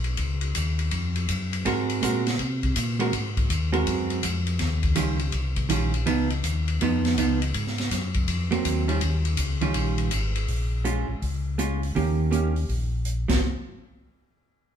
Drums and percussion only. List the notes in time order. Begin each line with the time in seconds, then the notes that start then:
0.04 ride
0.17 kick, ride
0.41 ride
0.55 kick, hi-hat pedal, ride
0.79 ride
0.91 kick, ride
1.16 ride
1.29 kick, hi-hat pedal, ride
1.53 ride
1.66 kick, ride
1.90 ride
2.03 kick, hi-hat pedal, ride
2.27 snare, ride
2.39 kick, ride
2.63 kick, ride
2.76 kick, hi-hat pedal, ride
3.00 ride
3.13 kick, ride
3.37 kick, ride
3.50 kick, hi-hat pedal, ride
3.73 ride
3.87 kick, ride
4.10 ride
4.23 kick, hi-hat pedal, ride
4.47 ride
4.59 kick, snare, ride
4.83 kick, ride
4.96 hi-hat pedal, ride
5.19 ride
5.32 kick, ride
5.56 kick, ride
5.70 kick, hi-hat pedal, ride
5.94 ride
6.07 kick, ride
6.30 ride
6.44 kick, hi-hat pedal, ride
6.68 ride
6.81 kick, ride
7.05 snare, ride
7.18 kick, hi-hat pedal, ride
7.42 ride
7.54 kick, ride
7.67 snare
7.78 snare, ride
7.91 kick, snare, hi-hat pedal, ride
8.14 kick, ride
8.28 kick, ride
8.52 ride
8.65 kick, hi-hat pedal, ride
8.89 ride
9.01 kick, ride
9.25 ride
9.37 kick, hi-hat pedal, ride
9.61 ride
9.74 kick, ride
9.98 ride
10.11 kick, hi-hat pedal, ride
10.36 ride
10.48 kick, open hi-hat
10.85 closed hi-hat
11.22 kick, open hi-hat
11.59 closed hi-hat
11.83 open hi-hat
11.96 kick, open hi-hat
12.32 closed hi-hat
12.56 open hi-hat
12.69 kick, open hi-hat
13.05 closed hi-hat
13.29 kick, snare, crash